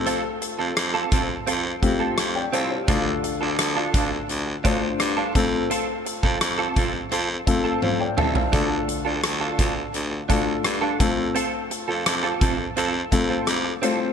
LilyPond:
<<
  \new Staff \with { instrumentName = "Clean electric guitar" } { \time 4/4 \key f \major \tempo 4 = 85 <c' f' a'>16 r8 <c' f' a'>16 r16 <c' f' a'>16 <c' f' a'>16 r16 <c' f' a'>16 r8 <c' f' a'>16 r8 <c' f' a'>16 r16 | <d' f' a'>16 r8 <d' f' a'>16 r16 <d' f' a'>16 <d' f' a'>16 r8. <d' f' a'>16 r8 <d' f' a'>16 r8 | <c' f' a'>16 r8 <c' f' a'>16 r16 <c' f' a'>16 <c' f' a'>16 r16 <c' f' a'>16 r8 <c' f' a'>16 r8 <c' f' a'>16 r16 | <d' f' a'>16 r8 <d' f' a'>16 r16 <d' f' a'>16 <d' f' a'>16 r8. <d' f' a'>16 r8 <d' f' a'>16 r8 |
<c' f' a'>16 r8 <c' f' a'>16 r16 <c' f' a'>16 <c' f' a'>16 r16 <c' f' a'>16 r8 <c' f' a'>16 r8 <c' f' a'>16 r16 | }
  \new Staff \with { instrumentName = "Grand piano" } { \time 4/4 \key f \major << { r2. r16 <d'' g''>16 <c'' f''>16 <g' c''>16~ | <g' c''>16 r2. r8. | r2. <c'' f''>16 <d'' g''>16 <e'' a''>16 <c'' f''>16~ | <c'' f''>16 r2. r8. |
r1 | } \\ { <a c' f' a'>4. r4 <a c' f' g'>4 r8 | <a d' f' a'>2 r8 <a d' f' c''>4 <a c' f' a'>8~ | <a c' f' a'>4. r4 <a c' f' a'>4 r8 | <a d' f' a'>2 r8 <a d' f' a'>4 <a c' f' a'>8~ |
<a c' f' a'>4. r4 <a c' f' a'>4 <a c' f' c''>8 | } >> }
  \new Staff \with { instrumentName = "Grand piano" } { \clef bass \time 4/4 \key f \major r1 | d4. r2 r8 | r1 | d4. r2 r8 |
r1 | }
  \new Staff \with { instrumentName = "Baritone saxophone" } { \clef bass \time 4/4 \key f \major f,8 r16 f,16 f,8 f,8 f,8 f,8 f,8 c,8 | d,8 r16 d,16 d,8 d,8 d,8 d,8 g,8 f,8 | r8. f,16 f,8 f,8 f,8 f,8 f,8 c,8 | d,8 r16 d,16 d,8 d,8 d,8 d,8 g,8 f,8 |
r8. f,16 f,8 f,8 f,8 f,8 f,8 c,8 | }
  \new DrumStaff \with { instrumentName = "Drums" } \drummode { \time 4/4 hh8 hh8 <hh ss>8 <hh bd>8 hh8 <hh bd>8 <hh ss>8 hh8 | <hh bd>8 hh8 <hh ss>8 <hh bd>8 hh8 <hh bd>8 <hh ss>8 <hh bd>8 | hh8 hh16 bd16 <hh ss>8 <hh bd>8 hh8 <hh bd>8 tommh8 toml16 tomfh16 | <hh bd>8 hh8 <hh ss>8 <hh bd>8 hh8 <hh bd>8 <hh ss>8 <hh bd>8 |
hh8 hh8 <hh ss>8 <hh bd>8 hh8 <hh bd>8 <hh ss>8 hh8 | }
>>